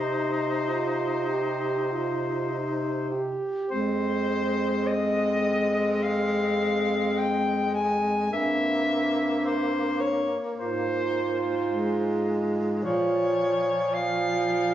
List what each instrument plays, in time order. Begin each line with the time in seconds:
Already playing: bass clarinet C3, tenor saxophone D#4, soprano saxophone C5
0.08 alto saxophone D#4
0.68 alto saxophone F4
1.27 alto saxophone G4
1.91 alto saxophone F4
2.51 alto saxophone D#4
3.12 alto saxophone G4
3.70 bass clarinet F2, tenor saxophone G#3, alto saxophone C4, soprano saxophone C5
4.87 soprano saxophone D#5
6.03 soprano saxophone F5
7.18 soprano saxophone G5
7.74 soprano saxophone G#5
8.31 bass clarinet G2, tenor saxophone A#3, alto saxophone C4, soprano saxophone E5
9.45 soprano saxophone C5
10.00 soprano saxophone C#5
10.57 bass clarinet G#2, alto saxophone F4, soprano saxophone C5
11.70 tenor saxophone G#3
12.83 bass clarinet A#2, tenor saxophone F3, alto saxophone F4, soprano saxophone C#5
13.94 soprano saxophone F5